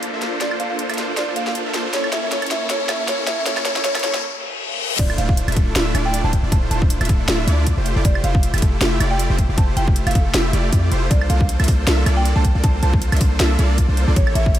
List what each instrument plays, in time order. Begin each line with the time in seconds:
Already playing: supersaw synth A#3 D4 F4 A4 C5, ambient pad A#3 F4 A4 C5 D5, riser
0.03 closed hi-hat
0.13 supersaw synth A#3 D4 F4 A4 E5
0.22 supersaw synth A#3 D4 F4 A4 C5, snare, closed hi-hat
0.41 supersaw synth A#3 D4 F4 A4 C5, marimba D5, snare, closed hi-hat
0.51 high woodblock
0.60 supersaw synth A#3 D4 F4 A4 C5, marimba F5, closed hi-hat
0.70 marimba F5
0.79 closed hi-hat
0.90 supersaw synth A#3 D4 F4 A4 E5, closed hi-hat, high woodblock
0.94 closed hi-hat
0.98 supersaw synth A#3 D4 F4 A4 C5, snare, closed hi-hat
1.17 supersaw synth A#3 D4 F4 A4 C5, marimba D5, snare, closed hi-hat
1.36 supersaw synth A#3 D4 F4 A4 C5, marimba F5, closed hi-hat
1.47 marimba F5, snare
1.55 closed hi-hat
1.66 supersaw synth A#3 D4 F4 A4 E5
1.74 supersaw synth A#3 D4 F4 A4 C5, snare, closed hi-hat
1.93 supersaw synth A#3 C#4 E4 A4 C#5, ambient pad G4 C#5, marimba C#5, snare, closed hi-hat
2.04 high woodblock
2.12 supersaw synth A#3 C#4 E4 A4 C#5, marimba E5, snare, closed hi-hat
2.23 marimba E5
2.32 supersaw synth A#3 C#4 E4 A4 C#5, marimba C#5, snare, closed hi-hat
2.42 closed hi-hat, high woodblock
2.46 closed hi-hat
2.51 supersaw synth A#3 C#4 E4 A4 C#5, marimba E5, snare, closed hi-hat
2.62 marimba E5
2.70 supersaw synth A#3 C#4 E4 A4 C#5, marimba C#5, snare, closed hi-hat
2.89 supersaw synth A#3 C#4 E4 A4 C#5, marimba E5, snare, closed hi-hat, high woodblock
3.00 marimba E5
3.08 supersaw synth A#3 C#4 E4 A4 C#5, marimba C#5, snare, closed hi-hat
3.27 supersaw synth A#3 C#4 E4 A4 C#5, marimba E5, snare, closed hi-hat
3.38 marimba E5
3.46 supersaw synth A#3 C#4 E4 A4 C#5, marimba C#5, snare, closed hi-hat
3.57 snare, high woodblock
3.65 supersaw synth A#3 C#4 E4 A4 C#5, marimba C#5, snare, closed hi-hat
3.76 snare
3.84 supersaw synth A#3 C#4 E4 A4 C#5, marimba C#5, snare, closed hi-hat
3.95 snare, closed hi-hat, high woodblock
3.99 supersaw synth C#4 E4, closed hi-hat
4.03 supersaw synth A#3 A4 C#5, marimba C#5, snare, closed hi-hat
4.14 snare
4.23 reverse cymbal
4.99 808-style bass D1, supersaw synth A3 D4 E4 F4 C5, marimba D5, kick, closed hi-hat, crash
5.10 high woodblock
5.18 808-style bass D1, supersaw synth A3 D4 E4 F4 C5, marimba F5, closed hi-hat
5.29 marimba F5, kick
5.37 closed hi-hat
5.48 808-style bass D1, supersaw synth A3 D4 E4 F4 E5, closed hi-hat, high woodblock
5.52 closed hi-hat
5.56 808-style bass D1, supersaw synth A3 D4 E4 F4 A4, kick, closed hi-hat
5.76 808-style bass D1, supersaw synth A3 D4 E4 F4 E5, snare, closed hi-hat
5.95 808-style bass D1, supersaw synth A3 D4 E4 F4 D5, closed hi-hat, high woodblock
6.06 marimba G5
6.14 closed hi-hat
6.24 808-style bass D1, supersaw synth A3 D4 E4 F4 C5, marimba A5
6.33 kick, closed hi-hat
6.43 808-style bass D1, supersaw synth A3 D4 E4 F4 D5
6.52 808-style bass D1, supersaw synth A3 D4 E4 F4 C5, marimba A5, kick, closed hi-hat
6.71 808-style bass D1, supersaw synth A3 D4 E4 F4 C5, marimba A5, closed hi-hat
6.82 kick
6.90 closed hi-hat
7.01 808-style bass D1, supersaw synth A3 D4 E4 F4 E5, closed hi-hat, high woodblock
7.05 closed hi-hat
7.09 808-style bass D1, supersaw synth A3 D4 E4 F4 A4, kick, closed hi-hat
7.28 808-style bass D1, supersaw synth A3 D4 E4 F4 E5, snare, closed hi-hat
7.47 808-style bass D2, supersaw synth A3 D4 E4 F4 D5, closed hi-hat
7.67 kick, closed hi-hat
7.77 808-style bass F1, supersaw synth A3 E4 F4 G4 C5
7.86 closed hi-hat
7.96 808-style bass F1, supersaw synth A3 E4 F4 G4 D5
8.05 808-style bass F1, supersaw synth A3 E4 F4 G4 C5, marimba D5, kick, closed hi-hat
8.15 high woodblock
8.24 808-style bass F1, supersaw synth A3 E4 F4 G4 C5, marimba F5, closed hi-hat
8.35 marimba F5, kick
8.43 closed hi-hat
8.54 808-style bass F1, supersaw synth A3 E4 F4 G4 E5, closed hi-hat, high woodblock
8.58 closed hi-hat
8.62 808-style bass F1, supersaw synth A3 E4 F4 G4 A4, kick, closed hi-hat
8.81 808-style bass F1, supersaw synth A3 E4 F4 G4 E5, snare, closed hi-hat
9.00 808-style bass F1, supersaw synth A3 E4 F4 G4 D5, closed hi-hat, high woodblock
9.11 marimba G5
9.19 closed hi-hat
9.30 808-style bass F1, supersaw synth A3 E4 F4 G4 C5
9.39 kick, closed hi-hat
9.49 808-style bass F1, supersaw synth A3 E4 F4 G4 D5
9.58 808-style bass F1, supersaw synth A3 E4 F4 G4 C5, marimba A5, kick, closed hi-hat
9.77 808-style bass F1, supersaw synth A3 E4 F4 G4 C5, marimba G5, closed hi-hat
9.88 kick
9.96 closed hi-hat
10.07 808-style bass F1, supersaw synth A3 E4 F4 G4 E5, marimba F5, closed hi-hat, high woodblock
10.11 closed hi-hat
10.15 808-style bass F1, supersaw synth A3 E4 F4 G4 A4, marimba F5, kick, closed hi-hat
10.34 808-style bass F1, supersaw synth A3 E4 F4 G4 E5, snare, closed hi-hat
10.53 808-style bass F1, supersaw synth A3 E4 F4 G4 D5, closed hi-hat
10.72 808-style bass F2, supersaw synth A3 E4 F4 G4 D5, kick, closed hi-hat
10.92 808-style bass F1, supersaw synth A3 E4 F4 G4 C5, closed hi-hat
11.10 808-style bass C2, supersaw synth A#3 D4 F4 A4 C5, marimba D5, kick, closed hi-hat
11.21 high woodblock
11.30 808-style bass C2, supersaw synth A#3 D4 F4 A4 C5, marimba F5, closed hi-hat
11.40 marimba F5, kick
11.49 closed hi-hat
11.60 808-style bass C2, supersaw synth A#3 D4 F4 A4 E5, closed hi-hat, high woodblock
11.64 closed hi-hat
11.68 808-style bass C2, supersaw synth A#3 D4 F4 A4 C5, kick, open hi-hat
11.87 808-style bass C2, supersaw synth A#3 D4 F4 A4 E5, snare, closed hi-hat
12.06 808-style bass C2, supersaw synth A#3 D4 F4 A4 D5, closed hi-hat, high woodblock
12.17 marimba G5
12.25 closed hi-hat
12.36 808-style bass C2, supersaw synth A#3 D4 F4 A4 C5, marimba A5
12.45 kick, closed hi-hat
12.55 808-style bass C2, supersaw synth A#3 D4 F4 A4 D5
12.63 808-style bass C2, supersaw synth A#3 D4 F4 A4 C5, marimba A5, kick, closed hi-hat
12.83 808-style bass C2, supersaw synth A#3 D4 F4 A4 C5, marimba A5, closed hi-hat
12.94 kick
13.02 closed hi-hat
13.12 808-style bass C2, supersaw synth A#3 D4 F4 A4 E5, closed hi-hat, high woodblock
13.17 closed hi-hat
13.21 808-style bass C2, supersaw synth A#3 D4 F4 A4 C5, kick, open hi-hat
13.40 808-style bass C2, supersaw synth A#3 D4 F4 A4 E5, snare, closed hi-hat
13.59 808-style bass C2, supersaw synth A#3 D4 F4 A4 D5, closed hi-hat
13.78 kick, closed hi-hat
13.89 808-style bass C2, supersaw synth A#3 D4 F4 A4 C5
13.97 closed hi-hat
14.08 808-style bass C2, supersaw synth A#3 D4 F4 A4 D5
14.16 808-style bass A1, supersaw synth A#3 E4 G4 A4 C#5, marimba C#5, kick, closed hi-hat
14.27 high woodblock
14.35 808-style bass A1, supersaw synth A#3 E4 G4 A4 C#5, marimba E5, closed hi-hat
14.46 marimba E5, kick
14.55 closed hi-hat